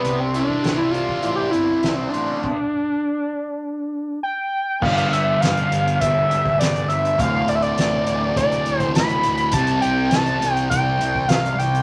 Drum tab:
CC |----------------|x---------------|x---------------|----------------|
HH |x-x-x-x-x-x-x-x-|----------------|-xx-xxxxx-x-xxxx|x-xxx-x-xxxxxxxx|
SD |----o-------o---|----------------|----o-------o---|----o-------o-o-|
BD |---o---o--------|o---------------|o-------o--o----|o-------o--o----|

CC |----------------|
HH |xxx-xxxxx-x-xxxx|
SD |----o-------o-o-|
BD |o-------o--o----|